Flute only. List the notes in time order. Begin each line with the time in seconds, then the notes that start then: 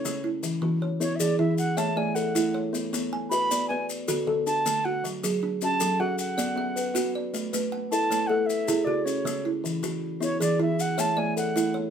Already playing: C#5
1.02 C#5
1.16 D5 E5
1.39 E5
1.58 F#5
1.78 A5
1.97 G#5
2.15 F#5
3.30 B5
3.68 G#5
4.47 A5
4.85 F#5
5.64 A5
6.00 F#5
6.20 F#5
7.92 A5
8.27 F#5
8.46 E5
8.84 D5
9.04 C#5
10.23 C#5
10.42 D5
10.62 E5
10.81 F#5
11.00 A5
11.18 G#5
11.38 F#5